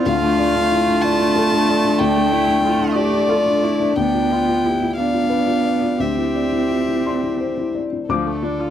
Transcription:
Already playing: cello F4
0.05 felt piano D2, viola A3, violin F5
0.23 felt piano D4
0.39 felt piano D5
0.56 felt piano D4
0.72 felt piano E4
0.88 felt piano D4
1.02 felt piano D5, violin A5
1.20 felt piano D4
1.36 felt piano A4
1.53 felt piano D4
1.69 felt piano D5
1.85 felt piano D4
1.99 felt piano D2, cello D4, violin G5
2.16 felt piano A3
2.32 cello E4, felt piano D5
2.48 felt piano D4
2.64 felt piano E4, cello F4
2.80 felt piano D4
2.94 cello G4, violin D5, felt piano D5
3.12 felt piano D4
3.29 cello F4, felt piano A4
3.46 felt piano D4
3.63 cello E4, felt piano D5
3.80 felt piano D4
3.96 felt piano D2, viola B3, cello D4, violin G5
4.14 felt piano F4
4.32 cello F4, felt piano D5
4.48 felt piano F4
4.65 cello E4, felt piano G4
4.82 felt piano F4
4.96 viola B3, cello D4, felt piano D5, violin F5
5.14 felt piano F4
5.30 felt piano B4
5.47 felt piano F4
5.66 felt piano D5
5.82 felt piano F4
5.99 felt piano D2, viola C4, cello G4, violin E5
6.17 felt piano E4
6.35 felt piano D5
6.52 felt piano E4
6.71 felt piano F4
6.89 felt piano E4
7.06 felt piano D5 C6
7.24 felt piano E4
7.41 felt piano C5
7.58 felt piano E4
7.75 felt piano D5
7.93 felt piano E4
8.09 felt piano D2 D6, cello D3, viola F3, violin A4
8.27 viola A3
8.43 viola D4, felt piano F4 D5
8.60 viola F4

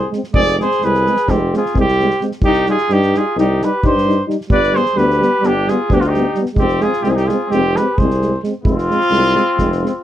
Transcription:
Already playing: flugelhorn G#4
0.11 euphonium G#3, french horn C4, snare
0.23 snare
0.33 tuba F1, euphonium G#3, french horn C4, flugelhorn G#4, trumpet D5, kick
0.47 snare
0.59 euphonium G#3, french horn C4, flugelhorn G#4, trumpet C5, snare
0.71 snare
0.81 tuba C2, euphonium G#3, french horn C4, flugelhorn G#4, trumpet B4, snare
0.94 snare
1.06 euphonium G#3, french horn C4, snare
1.16 snare
1.27 tuba F1, euphonium G#3, french horn C4, flugelhorn C4, trumpet G4, kick, snare
1.53 euphonium G#3, french horn C4, flugelhorn F4, trumpet G#4, snare
1.66 snare
1.75 tuba C2, euphonium G#3, french horn C4, kick
1.80 flugelhorn C4, trumpet G4
1.88 snare
2.00 euphonium G#3, french horn C4, snare
2.10 snare
2.21 euphonium G#3, french horn C4, snare
2.31 snare
2.42 tuba C2, euphonium G3, french horn D#4, trumpet G4, kick
2.46 flugelhorn D#4
2.53 snare
2.66 euphonium G3, french horn D#4, flugelhorn F4, snare
2.70 trumpet G#4
2.78 snare
2.89 tuba G2, euphonium G3, french horn D#4, flugelhorn D#4, trumpet G4, snare
3.02 snare
3.14 euphonium G3, french horn D#4, flugelhorn F4, trumpet G#4, snare
3.36 tuba C2, euphonium G3, french horn D#4, flugelhorn D#4, trumpet G4, snare
3.61 euphonium G3, french horn D#4, flugelhorn G4, trumpet B4, snare
3.83 tuba G2, euphonium G3, french horn D#4, flugelhorn G4, trumpet C5, kick
3.98 snare
4.06 euphonium G3, french horn D#4, snare
4.27 euphonium G3, french horn D#4, snare
4.41 snare
4.49 tuba G1, euphonium G3, french horn B3, flugelhorn B4, trumpet D5, kick
4.63 snare
4.71 euphonium G3, french horn B3
4.75 flugelhorn G#4, trumpet C5, snare
4.85 snare
4.94 tuba D2, euphonium G3, french horn B3, flugelhorn G4, trumpet B4, snare
5.10 snare
5.20 euphonium G3, french horn B3, snare
5.41 tuba G1, euphonium G3, french horn B3, snare
5.46 flugelhorn D4, trumpet G4
5.67 euphonium G3, french horn B3, flugelhorn F4, trumpet G#4, snare
5.90 tuba D2, euphonium G3, french horn B3, flugelhorn D4, trumpet G4, kick
5.97 flugelhorn D4, trumpet F4, snare
6.06 flugelhorn D#4, trumpet G4
6.14 euphonium G3, french horn B3, snare
6.34 euphonium G3, snare
6.39 french horn B3
6.46 snare
6.54 tuba F1, euphonium G#3, trumpet G4, kick
6.59 flugelhorn C4, french horn C4
6.68 snare
6.79 euphonium G#3, flugelhorn F4, trumpet G#4, snare
6.84 french horn C4
6.93 snare
7.02 tuba C2, euphonium G#3, flugelhorn C4, trumpet G4, snare
7.07 french horn C4, flugelhorn F4, trumpet G#4
7.14 flugelhorn D#4, trumpet G4, snare
7.26 euphonium G#3, flugelhorn F4, trumpet G#4, snare
7.32 french horn C4
7.47 euphonium G#3, flugelhorn C4
7.51 tuba F1, trumpet G4, snare
7.55 french horn C4
7.73 euphonium G#3, flugelhorn G4, trumpet B4, snare
7.81 french horn C4
7.95 euphonium G#3, flugelhorn G#4, trumpet C5, kick
7.99 tuba C2, french horn C4
8.10 snare
8.21 euphonium G#3, french horn C4, snare
8.43 euphonium G#3, french horn C4, snare
8.62 tuba F1, euphonium G#3, flugelhorn C4, trumpet F4, kick
8.66 french horn C4
8.78 snare
8.90 euphonium G#3, french horn C4, snare
9.01 snare
9.10 tuba C2, euphonium G#3, french horn C4, snare
9.25 snare
9.33 euphonium G#3, french horn C4, snare
9.58 tuba F1, euphonium G#3, french horn C4, kick, snare
9.72 snare
9.81 euphonium G#3, french horn C4
9.85 snare

